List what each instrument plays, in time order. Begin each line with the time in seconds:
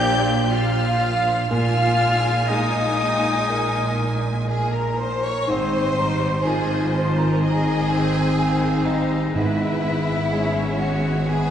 Already playing: double bass section A#1, felt piano A#2 F3, cello section A#2, french horn section F3 D4, oboe G4, viola section G4, violin section D5 G6, flute section G5
0.51 oboe F4, viola section F4, violin section F5 F6, flute section F5
1.49 double bass section A#1, cello section A#2, felt piano A#2, french horn section G#3 D#4, oboe F4, viola section F4, flute section F5, violin section G#5 F6
2.49 felt piano G#3, oboe D#4, viola section D#4, flute section D#5, clarinet D#5, violin section D#6
3.49 clarinet A#4
4.47 violin section G#4, clarinet A#4, flute section G#5
4.72 violin section A#4, flute section A#5
4.98 violin section C5, flute section C6
5.23 violin section C#5, flute section C#6
5.46 double bass section G#1, felt piano G#2, cello section G#2, viola section G#3 C5, french horn section C4 D#4, clarinet C4, violin section C5 D#5, flute section C6
5.95 viola section G3, clarinet D#4
6.44 felt piano D#3, viola section F3 C5, clarinet F4, violin section G#4 D#5, flute section G#5
6.94 violin section C5, flute section C6
7.18 violin section A#4, flute section A#5
7.41 viola section D#3 D#5, clarinet D#4, violin section G#4, flute section G#5
7.90 clarinet C4, viola section C5
8.38 viola section D#3 C5, violin section F5
8.86 viola section G3, violin section D#4, flute section D#5
9.33 double bass section G#1, timpani G#2, felt piano G#2, cello section G#2, viola section G#3 B4, french horn section G#3 B3, clarinet G#3, violin section E4 E5, flute section E5
9.85 clarinet B3
10.30 viola section G#3 C#5, felt piano G#3, clarinet C#4, violin section E5
10.80 violin section F#4, flute section F#5
11.27 clarinet B3, violin section G#4 E5, viola section B4, flute section G#5